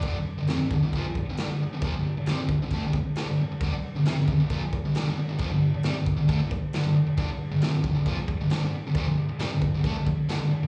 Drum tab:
CC |x-x-x-x-|x-x-x-x-|x-x-x-x-|x-x-x-x-|
SD |--o---o-|--o---o-|--o---o-|--o---o-|
BD |o--ooo--|o--ooo--|o--ooo--|o--ooo--|

CC |x-x-x-x-|x-x-x-x-|
SD |--o---o-|--o---o-|
BD |o--ooo--|o--ooo--|